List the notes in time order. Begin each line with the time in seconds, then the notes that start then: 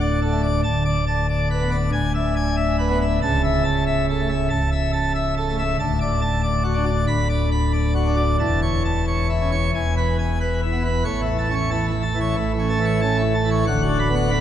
Already playing: D1 D2
0.01 D5
0.22 A4
0.32 A3
0.43 D5
0.64 D1 D2 A5
0.85 D5
1.07 A5
1.29 D5
1.51 B4
1.62 B3
1.71 D5
1.93 D1 D2 G#5
2.15 E5
2.36 G#5
2.57 E5
2.79 B4
2.89 B3
3.01 E5
3.22 C#1 C#2 A5
3.44 E5
3.65 A5
3.87 E5
4.09 A4
4.19 A3
4.29 E5
4.50 C#1 C#2 A5
4.72 E5
4.93 A5
5.15 E5
5.37 A4
5.48 A3
5.59 E5
5.80 D1 D2 A5
6.01 D5
6.22 A5
6.43 D5
6.64 F#4
6.74 D4
6.86 D5
7.07 D1 D2 B5
7.29 D5
7.52 B5
7.73 D5
7.95 F#4
8.07 D4
8.17 D5
8.40 E1 E2 A5
8.62 C#5
8.85 A5
9.07 C#5
9.30 E4
9.41 C#4
9.52 C#5
9.74 E1 E2 G#5
9.97 B4
10.19 G#5
10.41 B4
10.63 E4
10.72 B3
10.85 B4
11.05 A1 A2 C#5
11.22 E4
11.28 E3
11.39 A5
11.50 C#4
11.54 C#5
11.71 E3 A5
11.88 E4
12.03 A5
12.15 E3
12.21 C#5
12.37 A1 A2 E4
12.53 E3
12.59 C#4
12.70 A5
12.80 E3
12.85 C#5
13.02 C#4 A5
13.18 E4
13.34 A5
13.45 E3
13.51 C#5
13.67 D1 D2 F#5
13.82 F#4
13.88 D3
13.99 B5
14.10 B3
14.15 F#5
14.31 D3 B5